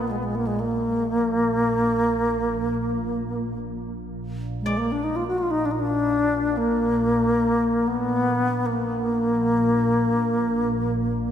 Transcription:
Already playing: ambient pad A#1
0.07 alto flute G#3 A#3
0.19 alto flute A#3
0.24 alto flute G#3
0.35 alto flute A#3
0.47 alto flute G#3
0.60 alto flute A#3
4.20 ambient pad A#1
4.61 alto flute G#3
4.66 guzheng D5
4.78 alto flute A#3
4.92 alto flute D4
5.04 alto flute D#4
5.16 alto flute F4
5.27 alto flute F#4
5.38 alto flute F4
5.51 alto flute D#4
5.65 alto flute D4
5.71 alto flute D#4
5.79 alto flute D4
6.57 alto flute A#3
7.87 alto flute B3
8.66 alto flute A#3

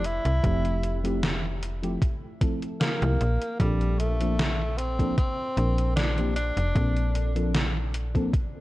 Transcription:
Already playing: fm bass F1
0.04 tenor saxophone E4, closed hi-hat
0.25 fm bass C2, closed hi-hat
0.43 fm bass F1, fm electric piano F3 A3 C4 E4 G4, kick, closed hi-hat
0.65 closed hi-hat
0.83 closed hi-hat
1.03 fm electric piano F3 A3 C4 E4 G4, closed hi-hat
1.23 snare, closed hi-hat
1.63 closed hi-hat
1.82 fm electric piano F3 A3 C4 E4 G4, closed hi-hat
2.02 kick, closed hi-hat
2.41 fm electric piano F3 A3 C4 E4 A4, kick, closed hi-hat
2.62 closed hi-hat
2.80 tenor saxophone A#3, snare, closed hi-hat
3.01 fm bass C2, fm electric piano F3 A3 C4 E4 G4, closed hi-hat
3.21 fm bass A#1, closed hi-hat
3.42 closed hi-hat
3.59 fm bass A#1, fm electric piano F3 A#3 C4 D4 A4, tenor saxophone G3, kick, closed hi-hat
3.81 closed hi-hat
3.99 tenor saxophone A3, closed hi-hat
4.19 fm electric piano F3 A#3 C4 D4 A4, closed hi-hat
4.39 snare, closed hi-hat
4.78 tenor saxophone C4, closed hi-hat
4.99 fm electric piano F3 A#3 C4 D4 A4, kick, closed hi-hat
5.18 tenor saxophone C4, kick, closed hi-hat
5.56 fm bass A#1, fm electric piano F3 A#3 C4 D4 A#4, closed hi-hat
5.78 closed hi-hat
5.96 tenor saxophone D4, snare, closed hi-hat
6.17 fm electric piano F3 A#3 C4 D4 G4, closed hi-hat
6.36 tenor saxophone D4, closed hi-hat
6.57 fm bass F1, closed hi-hat
6.75 fm bass A#1, fm electric piano F3 A#3 C4 D4 A4, kick, closed hi-hat
6.97 closed hi-hat
7.15 closed hi-hat
7.35 fm electric piano F3 A#3 C4 D4 A4, closed hi-hat
7.55 snare, closed hi-hat
7.94 closed hi-hat
8.14 fm electric piano F3 A#3 C4 D4 A4, kick, closed hi-hat
8.33 kick, closed hi-hat

